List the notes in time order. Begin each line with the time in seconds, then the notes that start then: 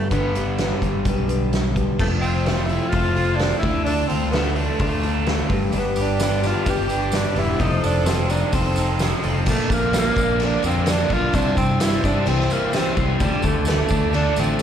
Already playing: D3 G3 B3 D4 G4 B4
0.10 G1 G2 D3 G3 B3 D4 G4 B4, kick, closed hi-hat
0.15 G4
0.35 D4 G4 B4, closed hi-hat
0.58 G3 D4 G4 B4, snare, closed hi-hat
0.82 G1, kick, closed hi-hat
1.05 B1 G3 D4 G4 B4, kick, closed hi-hat
1.29 D4 G4 B4, closed hi-hat
1.53 snare, closed hi-hat
1.75 D4 G4 B4, kick, closed hi-hat
1.99 F1 F2 F3 A3 C4 F4 A4, kick, crash
2.21 C4 F4, open hi-hat
2.46 A3 C4 F4 A4, snare, open hi-hat
2.66 E4 F4 A4, open hi-hat
2.70 C4
2.89 F4, open hi-hat
2.93 F1 F3 A3 C4 F4 A4, kick
3.16 C4 F4 A4, open hi-hat
3.36 D4, open hi-hat
3.40 F3, snare
3.58 E4 A4
3.63 D2 D3 D4 F4, kick, open hi-hat
3.84 D3 A3 D4 F4, open hi-hat
3.88 D3 A4
4.08 D2 C4 F4, open hi-hat
4.31 A3 B3 D4 F4 A4, snare, open hi-hat
4.55 A3 D4, open hi-hat
4.79 D2 D3 A3 D4 F4 A4, kick, open hi-hat
5.03 D4 F4 A4, open hi-hat
5.26 D3, snare, open hi-hat
5.49 G1 G2 D4 G4 B4, kick, open hi-hat
5.70 G1 G2 G3 D4 G4 B4 D5 B5 D6, open hi-hat, tambourine
5.78 B3
5.96 G4, open hi-hat, tambourine
6.01 D4
6.19 G3 B3 D4 G4 B4, snare, open hi-hat, tambourine
6.43 D4 F4, snare, open hi-hat, tambourine
6.66 G1 G3 D4 G4 B4, kick, open hi-hat, tambourine
6.70 G4
6.89 D4 G4 B4, open hi-hat, tambourine
7.11 G3 D4, snare, open hi-hat, tambourine
7.35 E1 B3 D4 E4 G4 B4, open hi-hat
7.59 F1 F3 C4 D#4 A4 C5 F5 C6 D#6, kick, open hi-hat, tambourine
7.83 F1 D4 A4, open hi-hat, tambourine
8.06 C4 D#4 A4 C5, snare, open hi-hat, tambourine
8.29 D4 D#4 A4 C5, open hi-hat, tambourine
8.52 F1 F3 C4 D#4 A4 C5, kick, open hi-hat, tambourine
8.76 D#4 A4 C5, open hi-hat, tambourine
8.99 F3, snare, open hi-hat, tambourine
9.23 F1 C4 D#4 A4 C5, open hi-hat, tambourine
9.46 A#1 A#2 F3 A3 A#3 D4 F4 A#4 D5 F5 D6, kick, crash, tambourine
9.70 A#1 A#3 D4 F4 A#4, kick, tambourine, crash
9.74 A#3
9.93 A#3, snare, tambourine, crash
9.98 A#3
10.16 A#1 D4, kick, tambourine, crash
10.40 A#2 D3 F3 A#3 D4 F4 A#4, tambourine, crash
10.45 D4
10.62 F2 A#3 C4 D4 F4 A#4, tambourine, crash
10.67 A#3
10.86 D3 A#3 D4 F4 A#4, snare, tambourine, crash
11.10 B1 D4 F4, kick, tambourine, crash
11.33 C2 C3 E3 G3 C4 D4 E4 G4 C5 E5 C6, kick, tambourine, crash
11.55 G2 G3 C4 E4 C5, kick, tambourine, crash
11.80 G3 E4, snare, tambourine, crash
12.02 G2 G3 C4 D4 E4 C5, kick, tambourine, crash
12.26 C2 C3 E3 G3 C4 E4 C5, tambourine, crash
12.40 snare
12.47 G3 C4 E4 C5, tambourine, crash
12.52 A#3
12.71 E3 G3 C4 E4 C5, snare, tambourine, crash
12.75 C4
12.97 C2 C4, kick, tambourine, crash
13.19 D2 D3 G3 A3 D4 F4 A4 D5 A5 D6, kick, tambourine, crash
13.42 D2 A3 D4 F4 A4, kick, tambourine, crash
13.65 A3, snare, tambourine, crash
13.89 D2 D4 F4 A4, kick, tambourine, crash
14.13 D3 A3 D4 F4 A4, tambourine, crash
14.36 A1 A3 C4 F4 A4, tambourine, crash
14.41 D4
14.59 tambourine